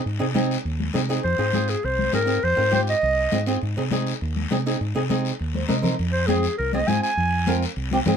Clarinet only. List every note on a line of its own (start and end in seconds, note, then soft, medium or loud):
1.24 1.71 C5 medium
1.70 1.86 G#4 medium
1.85 2.14 C5 medium
2.14 2.45 A#4 medium
2.44 2.73 C5 medium
2.75 2.81 C5 medium
2.89 3.44 D#5 medium
6.12 6.28 C5 medium
6.27 6.56 G#4 medium
6.58 6.72 A#4 medium
6.74 6.89 D#5 medium
6.88 7.02 G#5 medium
7.03 7.60 G#5 medium